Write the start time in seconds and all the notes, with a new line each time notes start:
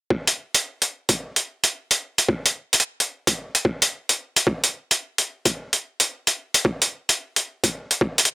0.10 kick
0.27 closed hi-hat
0.55 closed hi-hat
0.82 closed hi-hat
1.09 kick, closed hi-hat
1.36 closed hi-hat
1.64 closed hi-hat
1.91 closed hi-hat
2.18 closed hi-hat
2.29 kick
2.46 closed hi-hat
2.73 closed hi-hat
2.80 closed hi-hat
3.00 closed hi-hat
3.27 kick, closed hi-hat
3.55 closed hi-hat
3.65 kick
3.82 closed hi-hat
4.09 closed hi-hat
4.36 closed hi-hat
4.47 kick
4.64 closed hi-hat
4.91 closed hi-hat
5.18 closed hi-hat
5.45 kick, closed hi-hat
5.73 closed hi-hat
6.00 closed hi-hat
6.27 closed hi-hat
6.54 closed hi-hat
6.65 kick
6.82 closed hi-hat
7.09 closed hi-hat
7.36 closed hi-hat
7.64 kick, closed hi-hat
7.91 closed hi-hat
8.01 kick
8.18 closed hi-hat
8.25 closed hi-hat